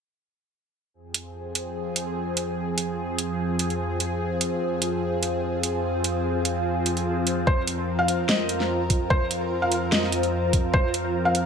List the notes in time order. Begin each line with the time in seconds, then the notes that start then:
0.94 F2 F3 C4 F4 G#4
1.03 C5
1.14 F5, closed hi-hat
1.55 closed hi-hat
1.96 closed hi-hat
2.37 closed hi-hat
2.78 closed hi-hat
3.18 closed hi-hat
3.59 closed hi-hat
3.70 closed hi-hat
4.00 closed hi-hat
4.41 closed hi-hat
4.82 closed hi-hat
5.23 closed hi-hat
5.63 closed hi-hat
6.04 closed hi-hat
6.45 closed hi-hat
6.86 closed hi-hat
6.97 closed hi-hat
7.27 closed hi-hat
7.47 A#4 C5, kick
7.67 closed hi-hat
7.99 F5
8.08 closed hi-hat
8.29 D#5, snare
8.49 closed hi-hat
8.60 snare
8.90 kick, closed hi-hat
9.10 C5, kick
9.31 closed hi-hat
9.62 F5
9.72 closed hi-hat
9.92 D#5, snare
10.03 snare
10.12 closed hi-hat
10.23 closed hi-hat
10.53 kick, closed hi-hat
10.74 C5, kick
10.94 closed hi-hat
11.25 F5
11.35 closed hi-hat